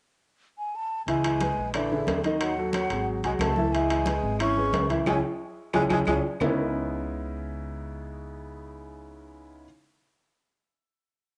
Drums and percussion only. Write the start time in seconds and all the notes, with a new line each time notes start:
1.08 high conga, high timbale
1.24 high conga, high timbale, claves
1.40 high conga, high timbale, low timbale
1.74 high conga, high timbale, claves
1.90 high conga
2.07 high conga, high timbale, low timbale
2.24 high conga, high timbale
2.40 high conga, high timbale, claves
2.57 high conga
2.73 high conga, high timbale, low timbale, claves
2.90 high timbale
3.07 high conga
3.23 high conga, high timbale
3.39 high conga, high timbale, low timbale, claves
3.56 high conga
3.75 high timbale
3.90 high conga, high timbale, claves
4.06 high conga, high timbale, low timbale
4.39 high conga, high timbale, claves
4.57 high conga
4.73 high conga, high timbale, low timbale
4.89 high conga, high timbale
5.06 high conga, high timbale, claves
5.73 high conga, high timbale, claves
5.90 high conga, high timbale, claves
6.07 high conga, high timbale, claves
6.40 low conga, low timbale, claves